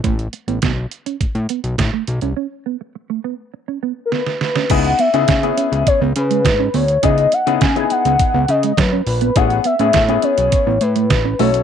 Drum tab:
CC |----------------|----------------|x---------------|----------------|
HH |xxxxx-xxxxxxx-xx|----------------|xxxxxxxxx-xxx-ox|xxxxxxxxx-xxx-ox|
SD |----o-------o---|------------oooo|----o-------o---|----o-------o---|
BD |o---o---o---o---|----------------|o---o---o---o---|o---o---o---o---|

CC |----------------|
HH |xxxxxxxxx-xxx-ox|
SD |----o-------o---|
BD |o---o---o---o---|